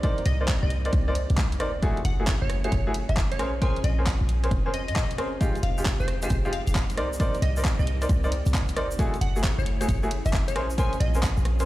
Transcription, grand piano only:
0.03 0.17 D#4 loud
0.03 0.17 A#4 medium
0.03 0.17 C5 medium
0.03 0.17 D5 loud
0.41 0.45 D#4 medium
0.41 0.45 A#4 medium
0.41 0.45 C5 medium
0.41 0.45 D5 medium
0.85 0.90 D#4 medium
0.85 0.90 A#4 medium
0.85 0.90 C5 medium
0.85 0.90 D5 loud
1.08 1.12 D#4 medium
1.08 1.12 A#4 medium
1.08 1.12 C5 medium
1.08 1.12 D5 loud
1.60 1.69 D#4 medium
1.60 1.69 A#4 medium
1.60 1.69 C5 medium
1.60 1.69 D5 loud
1.83 1.96 A3 loud
1.83 1.96 E4 medium
1.83 1.96 F#4 medium
1.83 1.96 G#4 loud
2.20 2.24 A3 medium
2.20 2.24 E4 medium
2.20 2.24 F#4 medium
2.20 2.24 G#4 medium
2.65 2.69 A3 medium
2.65 2.69 E4 medium
2.65 2.69 F#4 medium
2.65 2.69 G#4 medium
2.87 2.91 A3 medium
2.87 2.91 E4 medium
2.87 2.91 F#4 medium
2.87 2.91 G#4 loud
3.39 3.48 C#4 medium
3.39 3.48 G#4 medium
3.39 3.48 A#4 medium
3.39 3.48 C5 loud
3.62 3.75 C#4 loud
3.62 3.75 G#4 medium
3.62 3.75 A#4 medium
3.62 3.75 C5 loud
3.99 4.03 C#4 medium
3.99 4.03 G#4 medium
3.99 4.03 A#4 medium
3.99 4.03 C5 medium
4.44 4.48 C#4 medium
4.44 4.48 G#4 medium
4.44 4.48 A#4 medium
4.44 4.48 C5 loud
4.66 4.70 C#4 medium
4.66 4.70 G#4 medium
4.66 4.70 A#4 medium
4.66 4.70 C5 loud
5.18 5.27 C#4 medium
5.18 5.27 G#4 medium
5.18 5.27 A#4 medium
5.18 5.27 C5 loud
5.41 5.54 G#3 loud
5.41 5.54 D#4 medium
5.41 5.54 F4 medium
5.41 5.54 G4 loud
5.78 5.82 G#3 medium
5.78 5.82 D#4 medium
5.78 5.82 F4 medium
5.78 5.82 G4 medium
6.23 6.27 G#3 medium
6.23 6.27 D#4 medium
6.23 6.27 F4 medium
6.23 6.27 G4 loud
6.45 6.49 G#3 loud
6.45 6.49 D#4 medium
6.45 6.49 F4 medium
6.45 6.49 G4 loud
6.97 7.06 D#4 medium
6.97 7.06 A#4 medium
6.97 7.06 C5 medium
6.97 7.06 D5 loud
7.20 7.33 D#4 loud
7.20 7.33 A#4 medium
7.20 7.33 C5 medium
7.20 7.33 D5 loud
7.57 7.61 D#4 medium
7.57 7.61 A#4 medium
7.57 7.61 C5 medium
7.57 7.61 D5 medium
8.02 8.06 D#4 medium
8.02 8.06 A#4 medium
8.02 8.06 C5 medium
8.02 8.06 D5 loud
8.24 8.29 D#4 loud
8.24 8.29 A#4 medium
8.24 8.29 C5 medium
8.24 8.29 D5 loud
8.76 8.85 D#4 medium
8.76 8.85 A#4 medium
8.76 8.85 C5 medium
8.76 8.85 D5 loud
8.99 9.13 A3 loud
8.99 9.12 E4 medium
8.99 9.12 F#4 medium
8.99 9.13 G#4 loud
9.36 9.41 A3 medium
9.36 9.41 E4 medium
9.36 9.41 F#4 medium
9.36 9.40 G#4 medium
9.81 9.85 A3 medium
9.81 9.85 E4 medium
9.81 9.85 F#4 medium
9.81 9.85 G#4 medium
10.03 10.08 A3 loud
10.03 10.08 E4 medium
10.03 10.08 F#4 medium
10.03 10.08 G#4 loud
10.56 10.64 C#4 medium
10.56 10.64 G#4 medium
10.56 10.64 A#4 medium
10.56 10.64 C5 loud
10.78 10.92 C#4 loud
10.78 10.92 G#4 medium
10.78 10.92 A#4 medium
10.78 10.92 C5 loud
11.15 11.20 C#4 medium
11.15 11.20 G#4 medium
11.15 11.20 A#4 medium
11.15 11.20 C5 medium
11.60 11.64 C#4 medium
11.60 11.64 G#4 medium
11.60 11.64 A#4 medium
11.60 11.64 C5 loud

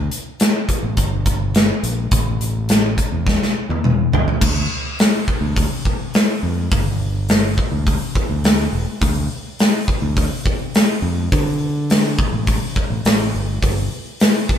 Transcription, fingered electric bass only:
0.83 0.95 A1 medium
0.97 1.71 G1 medium
1.83 2.08 A#1 medium
2.12 2.98 A1 medium
3.12 3.37 E2 medium
3.69 4.06 E2 medium
4.12 4.25 G1 medium
4.41 4.66 D2 medium
5.41 5.66 D2 medium
6.43 6.67 F2 medium
6.72 7.58 G1 loud
7.72 7.97 D2 medium
8.30 8.67 D2 medium
8.73 8.85 E1 medium
9.01 9.26 D2 medium
10.02 10.27 D2 medium
11.02 11.28 F2 medium
11.32 12.19 D3 medium
12.33 12.58 A1 medium
12.90 13.03 A1 medium
13.06 13.32 A1 medium
13.34 13.60 G1 medium
13.62 13.87 G1 medium

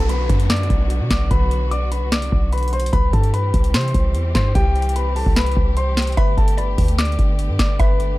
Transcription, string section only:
0.00 2.90 D3 medium
0.00 2.90 F#3 medium
0.00 2.90 B3 medium
0.00 2.90 F#4 medium
2.93 6.14 E3 medium
2.93 6.14 G3 medium
2.93 6.14 C4 medium
2.93 8.18 G4 medium
6.17 8.18 D3 medium
6.17 8.18 A3 medium
6.17 8.18 B3 medium

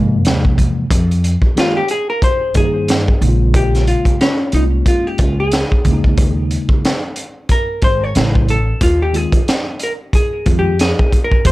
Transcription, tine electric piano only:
0.00 0.85 C3 medium
0.00 0.85 F3 medium
0.00 0.85 G#3 medium
0.00 0.85 A#3 medium
1.55 1.80 D#3 medium
1.55 1.81 G#3 medium
1.55 1.81 A#3 medium
1.55 1.81 G4 medium
2.54 3.03 D#3 medium
2.54 3.03 A#3 medium
2.54 3.04 D#4 medium
2.54 3.03 G#4 medium
3.21 4.28 C#3 medium
3.21 4.28 G#3 medium
3.21 4.28 A#3 medium
3.21 3.29 D#4 medium
3.29 4.31 F4 medium
4.53 5.47 G#3 medium
4.53 5.47 A#3 medium
4.53 5.46 C#4 medium
4.53 5.47 F4 medium
5.85 6.91 C#3 medium
5.85 6.92 G#3 medium
5.85 6.92 A#3 medium
5.85 5.93 C#4 medium
5.92 6.95 D#4 medium
8.15 8.56 C#3 medium
8.15 8.56 F#3 medium
8.15 8.56 A3 medium
8.15 8.57 E4 medium
9.13 9.39 D#3 medium
9.13 9.39 G#3 medium
9.13 9.39 C4 medium
9.13 9.39 F4 medium
10.46 10.71 D#3 medium
10.46 10.71 G#3 medium
10.46 10.71 C4 medium
10.46 10.71 F4 medium
11.45 11.52 D#3 medium
11.45 11.52 G#3 medium
11.45 11.52 A#3 medium
11.45 11.52 G4 medium

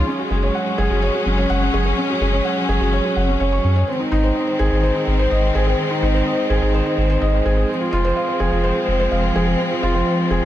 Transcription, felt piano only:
0.07 0.18 C#4 medium
0.19 0.30 F#4 medium
0.31 0.42 G#4 medium
0.43 0.54 C#5 medium
0.55 0.61 F#5 medium
0.66 0.78 C#5 medium
0.78 0.89 G#4 loud
0.90 1.02 F#4 medium
1.02 1.09 C#5 medium
1.14 1.25 F#4 medium
1.26 1.37 C#4 medium
1.38 1.49 C#5 loud
1.50 1.61 F#5 loud
1.62 1.73 C#5 medium
1.74 1.84 G#4 loud
1.86 1.97 G#4 medium
1.98 2.09 C#4 medium
2.09 2.21 F#4 medium
2.21 2.32 G#4 medium
2.33 2.44 C#5 medium
2.45 2.52 F#5 medium
2.57 2.68 C#5 medium
2.69 2.80 G#4 loud
2.81 2.92 F#4 medium
2.93 2.99 C#5 loud
3.05 3.16 F#4 medium
3.16 3.28 F#5 medium
3.28 3.40 C#4 medium
3.40 3.47 C#5 loud
3.52 3.63 C#6 medium
3.64 3.71 C#4 medium
3.76 3.83 C#5 medium
3.88 3.99 C4 medium
4.00 4.10 D#4 medium
4.12 4.23 D#4 loud
4.24 4.35 C5 medium
4.35 4.42 D#5 medium
4.47 4.59 C5 medium
4.59 4.71 G#4 loud
4.71 4.83 D#4 medium
4.83 4.90 C5 medium
4.95 5.06 D#4 medium
5.07 5.18 C4 medium
5.19 5.30 C5 loud
5.31 5.42 D#5 loud
5.43 5.54 C5 medium
5.55 5.65 G#4 loud
5.67 5.78 G#4 medium
5.79 5.90 C4 medium
5.91 6.01 D#4 medium
6.03 6.14 D#4 loud
6.14 6.25 C5 medium
6.26 6.33 D#5 medium
6.38 6.49 C5 medium
6.50 6.61 G#4 loud
6.62 6.73 D#4 medium
6.74 6.81 C5 loud
6.86 6.97 D#4 medium
6.98 7.09 C4 medium
7.10 7.21 C5 loud
7.22 7.33 D#5 loud
7.34 7.45 C5 medium
7.45 7.56 G#4 loud
7.57 7.68 G#4 medium
7.69 7.80 C4 medium
7.81 7.91 F4 medium
7.93 8.04 F4 loud
8.05 8.16 C5 loud
8.16 8.23 F5 medium
8.28 8.40 C5 medium
8.40 8.51 G#4 loud
8.52 8.63 F4 medium
8.64 8.71 C5 loud
8.76 8.87 F4 medium
8.88 8.99 C4 medium
9.00 9.11 C5 loud
9.11 9.23 F5 loud
9.23 9.35 C5 medium
9.36 9.46 G#4 loud
9.47 9.59 G#4 medium
9.59 9.70 C4 medium
9.71 9.81 F4 medium
9.83 9.94 F4 loud
9.95 10.06 C5 medium
10.07 10.14 F5 medium
10.19 10.30 C5 medium
10.31 10.42 G#4 loud

